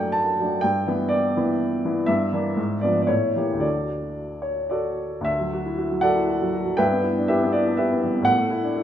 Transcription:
upright piano
Already playing: F#2 F#3 A3 D4 D5 F#5 G5
0.12 A5
0.40 F#3 A3 D4
0.61 G2 G5
0.87 E3 B3 E4
1.09 D5
1.37 E3 B3 E4
1.85 E3 B3 E4
2.06 G2 E5
2.33 E3 A#3 D4
2.56 G#2
2.81 F3 B3 D4 D5
3.02 D5
3.07 A2 C#5
3.36 E3 A#3 G4
3.53 D2
3.58 D3 A3 F#4 D5
4.42 C#5
4.70 F#4 A4 D5
5.21 D2 E5
5.39 F#3
5.53 F#4
5.66 E4
5.78 F#4
5.91 F#3
6.01 F#4 A4 D5 F#5
6.16 E4
6.28 F#4
6.42 F#3
6.53 F#4
6.66 F#3
6.77 G2 B4 E5 G5
6.92 B3
7.04 E4
7.18 D4
7.28 E4 G4 B4 E5
7.43 B3
7.52 E4 D5
7.67 D4
7.77 E4 G4 B4 E5
7.93 B3
8.04 G3
8.15 B3
8.22 A2 F#5
8.38 A3
8.50 E4
8.63 D4
8.76 E4

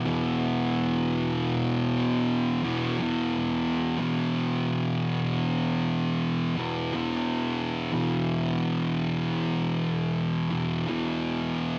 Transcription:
distorted electric guitar
0.06 E2 B2 E3
2.63 E2 B2 E3
3.01 E2 B2 E3
3.99 E2 B2 E3
6.57 E2 B2 E3
6.93 E2 B2 E3
7.92 E2 B2 E3
10.51 E2 B2 E3
10.88 E2 B2 E3

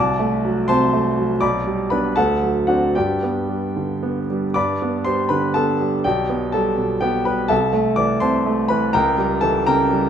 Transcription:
grand piano
Already playing: C2 D5 A5 D6
0.20 A3
0.44 F#3
0.68 C3 C5 A5 C6
0.93 A3
1.17 F#3
1.41 B1 D5 B5 D6
1.66 G3
1.90 B3 D4 B4 B5
2.16 D2 A4 F#5 A5
2.42 F#3
2.67 C4 D4 F#4 F#5
2.95 G2 G4 D5 G5
3.23 B3
3.49 G3
3.76 D3
4.03 B3
4.30 G3
4.54 G2 D5 B5 D6
4.82 B3
5.05 G3 C5 C6
5.29 D3 B4 B5
5.54 B3 A4 A5
5.80 G3
6.04 B1 G4 D5 G5
6.29 B3
6.52 G3 A4 A5
6.78 B2
7.01 B3 G4 G5
7.25 G3 B4 B5
7.48 C2 A4 E5 A5
7.73 A3
7.96 E3 D5 D6
8.20 C3 C5 A5 C6
8.46 A3
8.68 E3 B4 B5
8.93 C#2 A#4 G5 A#5
9.17 G3
9.41 E3 A4 A5
9.66 C#3 A#4 G5 A#5
9.91 G3

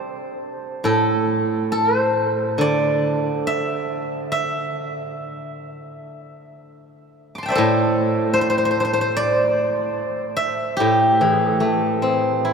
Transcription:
guzheng
Already playing: G4 C5 D5
0.84 A2 A4
1.72 A4
1.98 C5
2.58 D3 D5
3.47 E5
4.32 E5
7.35 C6 D6
7.43 G5 A5
7.48 C5 D5 E5
7.55 A2 A4
8.34 C5
8.41 C5
8.50 C5
8.58 C5
8.65 C5
8.71 C5
8.80 C5
8.85 C5
8.93 C5
9.01 C5
9.17 D5
10.37 E5
10.77 A2 G4
11.21 E3 G#4
11.51 A4
11.60 A3
12.02 C4
12.45 E4

